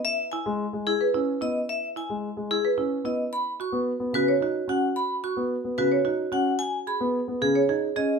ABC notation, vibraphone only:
X:1
M:3/4
L:1/16
Q:1/4=110
K:B
V:1 name="Vibraphone"
e z g z3 G z3 d z | e z g z3 G z3 d z | b z c' z3 B z3 f z | b z c' z3 B z3 f z |
g z b z3 G z3 d z |]